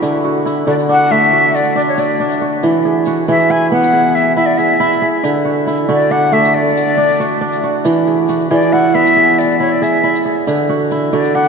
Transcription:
0.00 0.66 D3 medium
0.00 0.36 B3 medium
0.00 0.45 E4 medium
0.00 0.24 F#4 medium
0.00 0.74 G#4 medium
0.00 shaker medium
0.24 0.67 F#4 medium
0.46 2.02 E4 medium
0.46 shaker medium
0.67 2.68 D3 medium
0.67 1.33 F#4 medium
0.67 0.74 D5 medium
0.67 shaker soft
0.79 shaker soft
0.89 1.75 D4 medium
0.89 1.13 F#5 loud
1.11 2.91 A3 medium
1.11 1.57 E5 loud
1.23 shaker medium
1.33 1.97 F#4 medium
1.55 1.76 D5 medium
1.55 shaker medium
1.76 2.19 D4 medium
1.76 1.82 D5 medium
1.88 2.01 C#5 medium
1.88 shaker soft
1.98 2.41 F#4 medium
1.98 2.47 D5 medium
1.98 shaker medium
2.09 shaker soft
2.20 3.88 D4 medium
2.30 shaker medium
2.41 3.06 F#4 medium
2.63 3.27 E3 medium
2.63 shaker medium
2.85 3.28 G#4 medium
3.06 4.53 F#4 medium
3.06 shaker medium
3.28 5.29 E3 medium
3.28 3.93 G#4 medium
3.28 3.52 E5 medium
3.28 shaker soft
3.39 shaker soft
3.50 4.36 E4 medium
3.50 3.72 G#5 medium
3.72 5.58 B3 medium
3.72 4.17 F#5 medium
3.83 shaker medium
3.93 4.58 G#4 medium
4.15 4.36 E5 medium
4.15 shaker medium
4.36 4.79 E4 medium
4.36 4.48 E5 medium
4.46 4.59 D5 medium
4.46 shaker soft
4.58 5.01 G#4 medium
4.58 5.07 E5 medium
4.58 shaker medium
4.70 shaker soft
4.80 5.67 E4 medium
4.92 shaker soft
5.02 6.38 G#4 medium
5.24 5.87 D3 medium
5.24 shaker medium
5.45 5.88 F#4 medium
5.67 7.24 E4 medium
5.67 shaker medium
5.89 7.90 D3 medium
5.89 7.19 F#4 medium
5.89 6.13 D5 medium
5.89 shaker soft
6.00 shaker soft
6.11 6.97 D4 medium
6.11 6.35 F#5 medium
6.32 8.13 A3 medium
6.32 6.56 E5 medium
6.44 shaker medium
6.55 7.63 D5 medium
6.77 shaker medium
6.97 7.41 D4 medium
7.10 shaker soft
7.20 7.63 F#4 medium
7.20 shaker medium
7.31 shaker soft
7.41 9.09 D4 medium
7.52 shaker medium
7.64 8.29 F#4 medium
7.85 8.50 E3 medium
7.85 shaker medium
8.07 8.50 G#4 medium
8.07 shaker soft
8.29 9.75 F#4 medium
8.29 shaker medium
8.40 shaker soft
8.51 10.52 E3 medium
8.51 9.16 G#4 medium
8.51 8.74 D5 medium
8.51 shaker soft
8.62 shaker medium
8.73 9.59 E4 medium
8.73 8.96 F#5 medium
8.94 10.81 B3 medium
8.94 9.40 E5 loud
8.94 shaker soft
9.06 shaker medium
9.16 9.81 G#4 medium
9.16 shaker soft
9.39 9.60 D5 medium
9.39 shaker medium
9.60 10.03 E4 medium
9.60 9.73 C#5 medium
9.72 9.85 D5 medium
9.82 10.25 G#4 medium
9.82 10.31 E5 medium
9.82 shaker medium
10.04 10.91 E4 medium
10.04 shaker soft
10.15 shaker medium
10.25 11.48 G#4 medium
10.25 shaker soft
10.47 11.12 D3 medium
10.47 shaker medium
10.69 11.12 F#4 medium
10.91 11.48 E4 medium
10.91 shaker medium
11.13 11.48 D3 medium
11.13 11.48 F#4 medium
11.13 11.36 D5 medium
11.13 shaker soft
11.24 shaker soft
11.35 11.48 D4 medium
11.35 11.48 F#5 medium

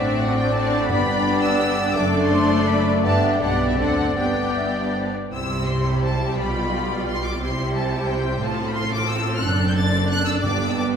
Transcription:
0.00 0.88 A1 soft
0.00 0.87 A2 medium
0.00 0.55 C4 soft
0.00 0.89 C4 soft
0.00 0.90 C4 soft
0.00 0.53 D4 soft
0.00 0.86 D4 soft
0.00 0.55 F#4 medium
0.00 0.22 C5 medium
0.00 0.54 D5 soft
0.00 0.85 D5 soft
0.00 0.20 E5 medium
0.20 0.54 D5 medium
0.20 0.38 F#5 medium
0.37 0.54 G5 medium
0.54 0.90 C4 medium
0.54 0.89 D4 medium
0.54 0.90 F#4 soft
0.54 1.24 D5 medium
0.54 0.89 D5 medium
0.54 0.81 A5 medium
0.82 1.44 B5 medium
0.89 1.97 G1 medium
0.89 1.96 G2 medium
0.89 1.39 G2 medium
0.89 1.97 B3 medium
0.89 1.95 B3 medium
0.89 1.98 B3 medium
0.89 2.86 D4 medium
0.89 1.95 D4 medium
0.89 1.97 G4 medium
0.89 1.95 D5 medium
0.89 2.87 D5 medium
1.26 1.63 D5 medium
1.42 1.95 E6 medium
1.62 1.99 B4 medium
1.96 3.02 F#1 medium
1.96 3.02 F#2 medium
1.96 2.86 A3 medium
1.96 3.04 A3 medium
1.96 3.06 A3 medium
1.96 3.02 D4 medium
1.96 3.05 A4 medium
1.96 2.33 A4 medium
1.96 3.02 D5 medium
1.96 2.23 D6 medium
2.23 2.67 C6 medium
2.31 2.67 C5 medium
2.67 3.06 D5 medium
2.67 2.86 B5 medium
3.03 3.41 G1 medium
3.03 3.41 G2 medium
3.03 3.38 B3 medium
3.03 3.40 B3 soft
3.03 3.42 B3 medium
3.03 3.40 D4 medium
3.03 3.38 D4 medium
3.03 3.40 G4 medium
3.03 5.10 D5 soft
3.03 3.39 D5 medium
3.03 3.40 E5 medium
3.03 3.30 A5 medium
3.32 3.41 G5 medium
3.40 3.78 B1 soft
3.40 3.78 B2 medium
3.40 3.78 G3 soft
3.40 3.79 G3 soft
3.40 3.77 B3 soft
3.40 3.77 D4 soft
3.40 3.77 G4 soft
3.40 3.76 D5 soft
3.40 3.77 D5 soft
3.40 3.68 F#5 medium
3.69 3.78 E5 medium
3.77 4.16 D2 soft
3.77 4.16 D3 soft
3.77 4.16 C4 soft
3.77 4.18 C4 soft
3.77 4.17 C4 soft
3.77 4.14 D4 soft
3.77 4.16 D4 soft
3.77 4.16 A4 soft
3.77 4.18 A4 soft
3.77 4.15 D5 soft
3.77 4.16 F#5 medium
4.15 5.12 G1 soft
4.15 5.12 G2 soft
4.15 5.14 B3 soft
4.15 5.15 B3 soft
4.15 5.12 D4 soft
4.15 5.13 D4 soft
4.15 5.13 G4 soft
4.15 4.53 B4 soft
4.15 5.13 D5 soft
4.15 4.94 G5 medium
4.57 4.79 E5 medium
4.78 4.95 D5 soft
4.96 5.17 C5 soft
5.16 5.34 B4 soft
5.33 6.34 C2 soft
5.33 6.33 C3 medium
5.33 7.37 G3 medium
5.33 6.34 E4 soft
5.33 7.36 G4 medium
5.33 6.34 C5 soft
5.33 5.66 E6 medium
5.68 5.95 C6 medium
5.95 6.04 B5 medium
6.04 6.29 A5 medium
6.32 6.39 G5 medium
6.37 7.40 B1 soft
6.37 7.40 B2 medium
6.37 7.37 F4 soft
6.37 7.36 D5 soft
6.37 7.06 B5 medium
7.07 7.23 C6 medium
7.25 7.41 D6 medium
7.40 8.40 C2 soft
7.40 8.40 C3 medium
7.40 8.38 G3 medium
7.40 8.38 E4 medium
7.40 8.39 G4 medium
7.40 9.39 C5 medium
7.40 7.75 C6 medium
7.75 8.08 A5 medium
8.08 8.42 G5 medium
8.41 9.40 A1 medium
8.41 9.40 A2 medium
8.41 10.40 C4 medium
8.41 9.39 F4 medium
8.41 10.40 A4 medium
8.41 8.67 A5 medium
8.66 8.75 B5 medium
8.74 8.91 C6 medium
8.93 9.09 D6 medium
9.09 9.34 E6 medium
9.34 9.43 F6 medium
9.42 10.43 F#1 medium
9.42 10.43 F#2 medium
9.42 10.96 D4 medium
9.42 10.96 D5 medium
9.42 9.68 F#6 medium
9.68 9.71 G6 medium
9.75 10.08 A6 medium
10.10 10.26 F#6 medium
10.26 10.33 E6 medium
10.43 10.96 G1 medium
10.43 10.96 G2 medium
10.43 10.90 G2 medium
10.43 10.96 B3 medium
10.43 10.96 G4 medium
10.43 10.68 D6 medium
10.68 10.77 E6 medium
10.78 10.84 D6 medium

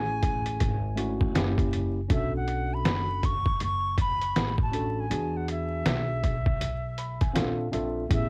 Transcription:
0.00 0.56 A1 medium
0.00 0.75 A3 medium
0.00 0.75 C#4 medium
0.00 0.76 E4 medium
0.00 0.76 G#4 medium
0.00 1.22 G#5 loud
0.23 kick medium
0.23 closed hi-hat medium
0.46 closed hi-hat medium
0.60 1.31 G#1 loud
0.60 kick medium
0.60 closed hi-hat loud
0.96 1.34 A3 medium
0.96 1.34 C#4 medium
0.96 1.35 E4 medium
0.96 1.35 F#4 loud
0.96 closed hi-hat medium
1.21 kick medium
1.34 2.06 F#1 loud
1.34 1.99 A#3 medium
1.34 1.99 C#4 medium
1.34 2.00 E4 medium
1.34 2.00 G4 loud
1.34 snare loud
1.34 closed hi-hat loud
1.58 kick loud
1.58 closed hi-hat soft
1.73 closed hi-hat medium
2.08 2.81 B1 loud
2.08 3.33 C#4 medium
2.08 3.33 D4 medium
2.08 3.34 F#4 medium
2.08 3.34 A4 medium
2.08 kick loud
2.08 closed hi-hat medium
2.13 2.33 E5 medium
2.37 2.75 F#5 medium
2.48 closed hi-hat medium
2.74 3.27 B5 loud
2.85 3.56 F#1 loud
2.85 snare loud
2.85 closed hi-hat medium
3.23 3.62 C#6 loud
3.23 kick medium
3.23 closed hi-hat medium
3.46 kick medium
3.60 4.32 F#1 medium
3.60 3.97 C#6 loud
3.60 closed hi-hat medium
3.98 4.56 B5 loud
3.98 kick medium
3.98 closed hi-hat medium
4.22 closed hi-hat medium
4.36 5.07 A1 medium
4.36 snare loud
4.36 closed hi-hat loud
4.58 kick medium
4.63 5.01 A5 medium
4.72 5.04 C#4 medium
4.72 5.04 D4 medium
4.72 5.05 F#4 medium
4.72 5.05 A4 medium
4.72 closed hi-hat medium
5.00 5.38 G#5 medium
5.09 5.82 E2 loud
5.09 6.33 B3 medium
5.09 6.33 D4 medium
5.09 6.34 F#4 medium
5.09 6.34 G#4 medium
5.09 closed hi-hat medium
5.37 5.49 F#5 medium
5.48 7.70 E5 medium
5.48 closed hi-hat medium
5.86 6.57 B1 loud
5.86 snare loud
5.86 closed hi-hat medium
6.24 kick medium
6.24 closed hi-hat medium
6.46 kick medium
6.61 7.32 B1 medium
6.61 closed hi-hat medium
6.98 7.20 B5 medium
6.98 closed hi-hat medium
7.21 7.34 G#5 medium
7.21 kick medium
7.21 closed hi-hat medium
7.34 7.71 A#1 loud
7.34 7.66 C4 medium
7.34 7.67 D4 medium
7.34 7.68 F4 medium
7.34 7.68 A4 loud
7.34 7.70 F5 medium
7.34 snare medium
7.34 closed hi-hat loud
7.72 8.09 A#1 medium
7.72 8.04 C4 medium
7.72 8.04 D4 medium
7.72 8.05 F4 medium
7.72 8.06 A4 loud
7.72 8.08 E5 medium
7.72 closed hi-hat medium
8.09 8.29 A1 loud
8.09 8.29 B3 medium
8.09 8.29 C#4 medium
8.09 8.29 E4 medium
8.09 8.29 G#4 medium
8.09 kick loud
8.09 closed hi-hat loud
8.13 8.29 E5 loud

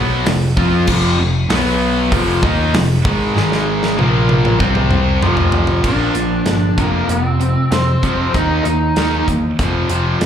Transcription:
0.00 0.24 B1 loud
0.00 0.24 B2 medium
0.00 0.25 F#3 medium
0.00 0.25 B3 medium
0.25 0.55 F1 medium
0.25 0.50 F2 medium
0.25 0.51 C3 medium
0.25 snare loud
0.25 open hi-hat medium
0.57 0.86 F2 medium
0.57 0.87 F3 medium
0.57 0.87 C4 medium
0.57 0.88 F4 loud
0.57 kick loud
0.87 1.17 F1 medium
0.87 1.18 F2 loud
0.87 1.18 C3 loud
0.87 1.19 F3 loud
0.87 kick loud
0.87 crash loud
1.19 1.48 F1 medium
1.19 1.44 F2 medium
1.19 1.44 C3 medium
1.49 2.07 B1 medium
1.49 2.11 B2 loud
1.49 2.11 F#3 loud
1.49 2.12 B3 loud
1.49 snare loud
1.49 open hi-hat medium
2.12 2.41 F1 loud
2.12 2.42 F2 medium
2.12 2.42 C3 medium
2.12 2.43 F3 loud
2.12 kick loud
2.12 open hi-hat medium
2.42 2.71 D#2 medium
2.42 2.73 D#3 medium
2.42 2.73 A#3 loud
2.42 2.74 D#4 loud
2.42 kick loud
2.74 3.03 F1 medium
2.74 2.99 F2 medium
2.74 3.00 C3 medium
2.74 snare loud
2.74 open hi-hat medium
3.05 3.34 G#1 medium
3.05 3.34 G#2 loud
3.05 3.36 D#3 medium
3.05 3.36 G#3 loud
3.05 kick loud
3.35 3.94 G#1 medium
3.35 3.97 G#2 loud
3.35 3.97 D#3 loud
3.35 3.98 G#3 loud
3.35 snare medium
3.52 snare medium
3.83 snare medium
3.97 4.56 A#1 medium
3.97 4.59 A#2 loud
3.97 4.60 F3 loud
3.97 4.60 A#3 loud
3.97 high tom medium
4.29 high tom medium
4.45 mid tom medium
4.60 5.18 C2 loud
4.60 5.21 C3 medium
4.60 5.21 G3 medium
4.60 5.22 C4 loud
4.60 kick loud
4.75 mid tom medium
4.91 mid tom medium
5.22 5.81 F1 loud
5.22 5.84 F2 medium
5.22 5.83 C3 loud
5.22 5.84 F3 medium
5.22 mid tom loud
5.37 floor tom medium
5.52 floor tom loud
5.67 floor tom medium
5.84 6.07 A#1 medium
5.84 6.14 A#2 medium
5.84 6.14 F3 medium
5.84 6.14 A#3 medium
5.84 6.82 D4 medium
5.84 kick medium
5.84 crash medium
6.15 6.39 A#1 medium
6.15 6.44 A#2 medium
6.15 6.44 F3 medium
6.15 closed hi-hat medium
6.46 6.70 G1 medium
6.46 6.75 A#2 medium
6.46 6.75 F3 medium
6.46 snare loud
6.46 closed hi-hat medium
6.77 7.01 F1 medium
6.77 7.07 F2 medium
6.77 7.08 C3 medium
6.77 7.08 F3 medium
6.77 7.08 A#3 medium
6.77 kick loud
6.77 closed hi-hat medium
7.09 7.55 F1 medium
7.09 7.38 F2 medium
7.09 7.38 C3 medium
7.09 7.70 C4 medium
7.09 closed hi-hat medium
7.41 7.69 F2 medium
7.41 7.69 C3 medium
7.41 closed hi-hat medium
7.71 8.00 F2 medium
7.71 7.94 F2 medium
7.71 8.00 C3 medium
7.71 8.36 C4 medium
7.71 snare loud
7.71 closed hi-hat medium
8.03 8.26 F1 medium
8.03 8.32 F2 medium
8.03 8.33 C3 medium
8.03 8.33 F3 medium
8.03 kick medium
8.03 closed hi-hat medium
8.33 8.58 D#2 medium
8.33 8.63 D#3 medium
8.33 8.64 A#3 medium
8.33 8.63 D#4 loud
8.33 8.64 D#4 loud
8.33 kick loud
8.33 closed hi-hat medium
8.64 8.89 D#2 medium
8.64 8.94 D#3 medium
8.64 8.94 A#3 medium
8.64 9.23 D#4 medium
8.64 closed hi-hat medium
8.96 9.20 D#2 medium
8.96 9.26 D#3 medium
8.96 9.27 A#3 medium
8.96 9.27 D#4 medium
8.96 snare loud
8.96 closed hi-hat medium
9.28 9.51 E2 medium
9.28 9.56 D#3 medium
9.28 9.56 A#3 medium
9.28 kick medium
9.28 closed hi-hat medium
9.59 9.82 F1 medium
9.59 9.89 F2 medium
9.59 9.89 C3 medium
9.59 9.89 F3 medium
9.59 kick loud
9.59 closed hi-hat medium
9.89 10.13 F1 medium
9.89 10.19 F2 medium
9.89 10.20 C3 medium
9.89 10.20 F3 medium
9.89 closed hi-hat medium
10.20 10.26 F1 medium
10.20 10.26 F2 medium
10.20 10.26 C3 medium
10.20 snare loud
10.20 closed hi-hat medium

